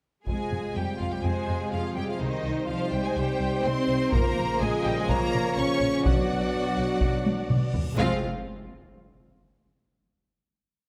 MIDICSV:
0, 0, Header, 1, 11, 480
1, 0, Start_track
1, 0, Key_signature, -4, "minor"
1, 0, Tempo, 481541
1, 274, Time_signature, 4, 2, 24, 8
1, 10846, End_track
2, 0, Start_track
2, 0, Title_t, "Violin section"
2, 0, Program_c, 0, 48
2, 272, Note_on_c, 0, 80, 53
2, 719, Note_off_c, 0, 80, 0
2, 753, Note_on_c, 0, 79, 50
2, 987, Note_on_c, 0, 77, 50
2, 993, Note_off_c, 0, 79, 0
2, 1111, Note_off_c, 0, 77, 0
2, 1123, Note_on_c, 0, 79, 53
2, 1224, Note_on_c, 0, 80, 60
2, 1238, Note_off_c, 0, 79, 0
2, 1709, Note_off_c, 0, 80, 0
2, 1714, Note_on_c, 0, 77, 53
2, 1949, Note_off_c, 0, 77, 0
2, 1954, Note_on_c, 0, 79, 55
2, 2071, Note_off_c, 0, 79, 0
2, 2085, Note_on_c, 0, 77, 51
2, 2192, Note_on_c, 0, 75, 61
2, 2197, Note_off_c, 0, 77, 0
2, 2664, Note_on_c, 0, 77, 59
2, 2672, Note_off_c, 0, 75, 0
2, 2904, Note_off_c, 0, 77, 0
2, 2909, Note_on_c, 0, 79, 61
2, 3031, Note_off_c, 0, 79, 0
2, 3038, Note_on_c, 0, 80, 62
2, 3154, Note_on_c, 0, 79, 65
2, 3156, Note_off_c, 0, 80, 0
2, 3634, Note_off_c, 0, 79, 0
2, 3634, Note_on_c, 0, 84, 77
2, 4114, Note_off_c, 0, 84, 0
2, 4118, Note_on_c, 0, 82, 81
2, 4587, Note_off_c, 0, 82, 0
2, 4598, Note_on_c, 0, 80, 77
2, 4836, Note_off_c, 0, 80, 0
2, 4844, Note_on_c, 0, 79, 72
2, 4960, Note_off_c, 0, 79, 0
2, 4970, Note_on_c, 0, 80, 84
2, 5080, Note_on_c, 0, 82, 99
2, 5083, Note_off_c, 0, 80, 0
2, 5558, Note_off_c, 0, 82, 0
2, 5559, Note_on_c, 0, 85, 89
2, 6038, Note_off_c, 0, 85, 0
2, 6038, Note_on_c, 0, 78, 73
2, 7685, Note_off_c, 0, 78, 0
2, 7965, Note_on_c, 0, 77, 83
2, 8229, Note_off_c, 0, 77, 0
2, 10846, End_track
3, 0, Start_track
3, 0, Title_t, "Viola section"
3, 0, Program_c, 1, 48
3, 1229, Note_on_c, 1, 72, 47
3, 1677, Note_off_c, 1, 72, 0
3, 1713, Note_on_c, 1, 68, 46
3, 2183, Note_off_c, 1, 68, 0
3, 2197, Note_on_c, 1, 72, 55
3, 4596, Note_off_c, 1, 72, 0
3, 4596, Note_on_c, 1, 75, 74
3, 5072, Note_on_c, 1, 73, 61
3, 5075, Note_off_c, 1, 75, 0
3, 6028, Note_on_c, 1, 74, 60
3, 6035, Note_off_c, 1, 73, 0
3, 7680, Note_off_c, 1, 74, 0
3, 7954, Note_on_c, 1, 56, 66
3, 7956, Note_on_c, 1, 60, 66
3, 8223, Note_off_c, 1, 56, 0
3, 8225, Note_off_c, 1, 60, 0
3, 10846, End_track
4, 0, Start_track
4, 0, Title_t, "Violin section"
4, 0, Program_c, 2, 48
4, 268, Note_on_c, 2, 68, 49
4, 717, Note_off_c, 2, 68, 0
4, 750, Note_on_c, 2, 67, 49
4, 975, Note_on_c, 2, 65, 41
4, 992, Note_off_c, 2, 67, 0
4, 1102, Note_off_c, 2, 65, 0
4, 1117, Note_on_c, 2, 67, 39
4, 1230, Note_on_c, 2, 68, 49
4, 1235, Note_off_c, 2, 67, 0
4, 1712, Note_off_c, 2, 68, 0
4, 1726, Note_on_c, 2, 65, 45
4, 1954, Note_on_c, 2, 67, 43
4, 1960, Note_off_c, 2, 65, 0
4, 2073, Note_off_c, 2, 67, 0
4, 2083, Note_on_c, 2, 65, 47
4, 2194, Note_on_c, 2, 63, 58
4, 2198, Note_off_c, 2, 65, 0
4, 2674, Note_off_c, 2, 63, 0
4, 2675, Note_on_c, 2, 65, 50
4, 2909, Note_off_c, 2, 65, 0
4, 2911, Note_on_c, 2, 67, 52
4, 3032, Note_off_c, 2, 67, 0
4, 3042, Note_on_c, 2, 68, 52
4, 3150, Note_on_c, 2, 67, 60
4, 3158, Note_off_c, 2, 68, 0
4, 3623, Note_on_c, 2, 72, 72
4, 3632, Note_off_c, 2, 67, 0
4, 4108, Note_on_c, 2, 70, 77
4, 4109, Note_off_c, 2, 72, 0
4, 4582, Note_off_c, 2, 70, 0
4, 4602, Note_on_c, 2, 68, 73
4, 4819, Note_on_c, 2, 67, 66
4, 4839, Note_off_c, 2, 68, 0
4, 4947, Note_off_c, 2, 67, 0
4, 4948, Note_on_c, 2, 68, 63
4, 5072, Note_off_c, 2, 68, 0
4, 5075, Note_on_c, 2, 70, 73
4, 5550, Note_on_c, 2, 73, 74
4, 5555, Note_off_c, 2, 70, 0
4, 6031, Note_on_c, 2, 66, 70
4, 6033, Note_off_c, 2, 73, 0
4, 7681, Note_off_c, 2, 66, 0
4, 7955, Note_on_c, 2, 65, 76
4, 8224, Note_off_c, 2, 65, 0
4, 10846, End_track
5, 0, Start_track
5, 0, Title_t, "French horn section"
5, 0, Program_c, 3, 60
5, 261, Note_on_c, 3, 60, 42
5, 266, Note_on_c, 3, 65, 40
5, 2149, Note_off_c, 3, 65, 0
5, 2204, Note_on_c, 3, 63, 46
5, 4067, Note_off_c, 3, 60, 0
5, 4081, Note_off_c, 3, 63, 0
5, 4115, Note_on_c, 3, 58, 60
5, 4116, Note_on_c, 3, 65, 61
5, 5998, Note_off_c, 3, 58, 0
5, 6035, Note_on_c, 3, 62, 53
5, 6037, Note_off_c, 3, 65, 0
5, 6042, Note_on_c, 3, 59, 55
5, 7687, Note_off_c, 3, 59, 0
5, 7717, Note_off_c, 3, 62, 0
5, 7953, Note_on_c, 3, 60, 73
5, 7956, Note_on_c, 3, 56, 75
5, 8155, Note_off_c, 3, 60, 0
5, 8157, Note_off_c, 3, 56, 0
5, 10846, End_track
6, 0, Start_track
6, 0, Title_t, "Cello section"
6, 0, Program_c, 4, 48
6, 274, Note_on_c, 4, 56, 43
6, 720, Note_off_c, 4, 56, 0
6, 746, Note_on_c, 4, 55, 41
6, 987, Note_on_c, 4, 53, 42
6, 990, Note_off_c, 4, 55, 0
6, 1108, Note_off_c, 4, 53, 0
6, 1113, Note_on_c, 4, 55, 40
6, 1233, Note_off_c, 4, 55, 0
6, 1234, Note_on_c, 4, 56, 48
6, 1704, Note_off_c, 4, 56, 0
6, 1712, Note_on_c, 4, 53, 46
6, 1952, Note_on_c, 4, 55, 45
6, 1953, Note_off_c, 4, 53, 0
6, 2073, Note_off_c, 4, 55, 0
6, 2075, Note_on_c, 4, 53, 48
6, 2194, Note_off_c, 4, 53, 0
6, 2198, Note_on_c, 4, 51, 54
6, 2675, Note_off_c, 4, 51, 0
6, 2681, Note_on_c, 4, 53, 53
6, 2912, Note_off_c, 4, 53, 0
6, 2925, Note_on_c, 4, 55, 50
6, 3037, Note_off_c, 4, 55, 0
6, 3039, Note_on_c, 4, 56, 50
6, 3154, Note_off_c, 4, 56, 0
6, 3163, Note_on_c, 4, 55, 60
6, 3638, Note_off_c, 4, 55, 0
6, 3645, Note_on_c, 4, 60, 66
6, 4120, Note_off_c, 4, 60, 0
6, 4125, Note_on_c, 4, 58, 65
6, 4600, Note_off_c, 4, 58, 0
6, 4607, Note_on_c, 4, 56, 65
6, 4840, Note_on_c, 4, 55, 71
6, 4841, Note_off_c, 4, 56, 0
6, 4957, Note_off_c, 4, 55, 0
6, 4963, Note_on_c, 4, 56, 67
6, 5079, Note_off_c, 4, 56, 0
6, 5083, Note_on_c, 4, 58, 76
6, 5559, Note_off_c, 4, 58, 0
6, 5564, Note_on_c, 4, 61, 69
6, 6031, Note_off_c, 4, 61, 0
6, 6044, Note_on_c, 4, 54, 62
6, 7722, Note_off_c, 4, 54, 0
6, 7955, Note_on_c, 4, 53, 67
6, 8224, Note_off_c, 4, 53, 0
6, 10846, End_track
7, 0, Start_track
7, 0, Title_t, "Trombone section"
7, 0, Program_c, 5, 61
7, 271, Note_on_c, 5, 56, 41
7, 273, Note_on_c, 5, 48, 44
7, 2151, Note_off_c, 5, 56, 0
7, 2190, Note_on_c, 5, 55, 47
7, 4073, Note_off_c, 5, 48, 0
7, 4074, Note_off_c, 5, 55, 0
7, 4115, Note_on_c, 5, 49, 61
7, 4115, Note_on_c, 5, 53, 68
7, 5998, Note_off_c, 5, 53, 0
7, 6036, Note_off_c, 5, 49, 0
7, 6040, Note_on_c, 5, 47, 59
7, 6044, Note_on_c, 5, 54, 51
7, 7686, Note_off_c, 5, 47, 0
7, 7688, Note_off_c, 5, 54, 0
7, 7955, Note_on_c, 5, 53, 71
7, 7957, Note_on_c, 5, 48, 69
7, 8156, Note_off_c, 5, 53, 0
7, 8158, Note_off_c, 5, 48, 0
7, 10846, End_track
8, 0, Start_track
8, 0, Title_t, "Double bass section"
8, 0, Program_c, 6, 48
8, 273, Note_on_c, 6, 41, 42
8, 353, Note_off_c, 6, 41, 0
8, 511, Note_on_c, 6, 41, 38
8, 591, Note_off_c, 6, 41, 0
8, 749, Note_on_c, 6, 41, 36
8, 828, Note_off_c, 6, 41, 0
8, 997, Note_on_c, 6, 41, 32
8, 1077, Note_off_c, 6, 41, 0
8, 1231, Note_on_c, 6, 41, 51
8, 1310, Note_off_c, 6, 41, 0
8, 1468, Note_on_c, 6, 41, 35
8, 1548, Note_off_c, 6, 41, 0
8, 1713, Note_on_c, 6, 41, 36
8, 1793, Note_off_c, 6, 41, 0
8, 1955, Note_on_c, 6, 41, 35
8, 2035, Note_off_c, 6, 41, 0
8, 2198, Note_on_c, 6, 36, 57
8, 2277, Note_off_c, 6, 36, 0
8, 2436, Note_on_c, 6, 36, 38
8, 2516, Note_off_c, 6, 36, 0
8, 2674, Note_on_c, 6, 36, 43
8, 2753, Note_off_c, 6, 36, 0
8, 2917, Note_on_c, 6, 36, 41
8, 2997, Note_off_c, 6, 36, 0
8, 3154, Note_on_c, 6, 36, 60
8, 3234, Note_off_c, 6, 36, 0
8, 3394, Note_on_c, 6, 36, 44
8, 3474, Note_off_c, 6, 36, 0
8, 3633, Note_on_c, 6, 36, 43
8, 3713, Note_off_c, 6, 36, 0
8, 3871, Note_on_c, 6, 36, 48
8, 3951, Note_off_c, 6, 36, 0
8, 4120, Note_on_c, 6, 34, 67
8, 4199, Note_off_c, 6, 34, 0
8, 4354, Note_on_c, 6, 34, 51
8, 4434, Note_off_c, 6, 34, 0
8, 4599, Note_on_c, 6, 34, 57
8, 4679, Note_off_c, 6, 34, 0
8, 4838, Note_on_c, 6, 34, 56
8, 4918, Note_off_c, 6, 34, 0
8, 5074, Note_on_c, 6, 34, 76
8, 5154, Note_off_c, 6, 34, 0
8, 5316, Note_on_c, 6, 34, 53
8, 5396, Note_off_c, 6, 34, 0
8, 5555, Note_on_c, 6, 34, 52
8, 5635, Note_off_c, 6, 34, 0
8, 5793, Note_on_c, 6, 34, 49
8, 5873, Note_off_c, 6, 34, 0
8, 6036, Note_on_c, 6, 35, 63
8, 6116, Note_off_c, 6, 35, 0
8, 6278, Note_on_c, 6, 35, 41
8, 6358, Note_off_c, 6, 35, 0
8, 6521, Note_on_c, 6, 35, 44
8, 6601, Note_off_c, 6, 35, 0
8, 6753, Note_on_c, 6, 35, 45
8, 6833, Note_off_c, 6, 35, 0
8, 6992, Note_on_c, 6, 35, 56
8, 7072, Note_off_c, 6, 35, 0
8, 7232, Note_on_c, 6, 35, 43
8, 7312, Note_off_c, 6, 35, 0
8, 7464, Note_on_c, 6, 35, 37
8, 7544, Note_off_c, 6, 35, 0
8, 7714, Note_on_c, 6, 35, 37
8, 7794, Note_off_c, 6, 35, 0
8, 7953, Note_on_c, 6, 29, 79
8, 8223, Note_off_c, 6, 29, 0
8, 10846, End_track
9, 0, Start_track
9, 0, Title_t, "Impact"
9, 0, Program_c, 7, 103
9, 7955, Note_on_c, 7, 60, 64
9, 9876, Note_off_c, 7, 60, 0
9, 10846, End_track
10, 0, Start_track
10, 0, Title_t, "Reverse cymbal"
10, 0, Program_c, 8, 119
10, 6034, Note_on_c, 8, 60, 50
10, 7956, Note_off_c, 8, 60, 0
10, 10846, End_track
11, 0, Start_track
11, 0, Title_t, "Taiko and cinematic ensemble drums"
11, 267, Note_on_c, 9, 41, 53
11, 366, Note_off_c, 9, 41, 0
11, 991, Note_on_c, 9, 41, 30
11, 1091, Note_off_c, 9, 41, 0
11, 4111, Note_on_c, 9, 41, 88
11, 4210, Note_off_c, 9, 41, 0
11, 5074, Note_on_c, 9, 41, 78
11, 5173, Note_off_c, 9, 41, 0
11, 6039, Note_on_c, 9, 41, 96
11, 6139, Note_off_c, 9, 41, 0
11, 6987, Note_on_c, 9, 41, 76
11, 7087, Note_off_c, 9, 41, 0
11, 7237, Note_on_c, 9, 48, 75
11, 7337, Note_off_c, 9, 48, 0
11, 7476, Note_on_c, 9, 47, 76
11, 7576, Note_off_c, 9, 47, 0
11, 7718, Note_on_c, 9, 43, 87
11, 7817, Note_off_c, 9, 43, 0
11, 10846, End_track
0, 0, End_of_file